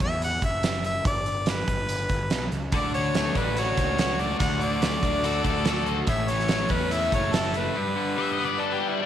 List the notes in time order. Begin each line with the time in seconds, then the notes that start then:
0.00 E2 E5, kick
0.22 F#5, closed hi-hat
0.42 F#1 E5, kick, closed hi-hat
0.63 snare, closed hi-hat
0.84 E5, closed hi-hat
1.05 G1 D5, kick, closed hi-hat
1.26 closed hi-hat
1.46 B4, snare, closed hi-hat
1.67 G1, kick, closed hi-hat
1.89 closed hi-hat
2.09 G1, kick, closed hi-hat
2.30 B1, snare, closed hi-hat
2.52 C#2, closed hi-hat
2.72 D2 D3 D5, kick, closed hi-hat
2.94 D3 C#5, closed hi-hat
3.15 A3, snare, closed hi-hat
3.35 A1 D4 B4, kick, closed hi-hat
3.57 F#4 C#5, closed hi-hat
3.77 C#2 A3, kick, closed hi-hat
3.98 F#4, snare, closed hi-hat
4.19 A3 D5, closed hi-hat
4.39 D2 D3 F#5, kick, closed hi-hat
4.61 D3 D5, closed hi-hat
4.82 A3, snare, closed hi-hat
5.03 D2 D4, kick, closed hi-hat
5.24 F#4 A4, closed hi-hat
5.44 D2 A3 A4, kick, closed hi-hat
5.65 F#4 A4, snare, closed hi-hat
5.86 A3, closed hi-hat
6.07 A1 A2 E5, kick, closed hi-hat
6.28 E3 C#5, closed hi-hat
6.39 snare
6.48 A3, snare, closed hi-hat
6.69 E2 C#4 B4, kick, closed hi-hat
6.91 E4 E5, closed hi-hat
7.12 F#1 A3 C#5, kick, closed hi-hat
7.33 E4 A4, snare, closed hi-hat
7.54 A3 B4, closed hi-hat
7.74 G2
7.95 D3
8.16 G3 E5
8.32 D#5
8.39 B3
8.45 D5
8.58 D4 A4
8.73 G4
8.80 G3
8.88 E4
9.01 D4